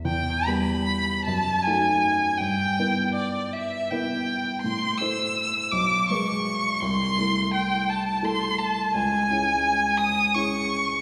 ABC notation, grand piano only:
X:1
M:6/8
L:1/8
Q:3/8=55
K:Em
V:1 name="Grand piano"
E,, [G,B,G]2 F,, [A,^DF]2 | G,, [B,EB]3 [B,EB]2 | A,, [A,Ec]2 B,,, [^G,^GB]2 | C,, [A,EA]3 [A,EA]2 |
[K:C#dor] C,, [CEG]3 [CEG]2 |]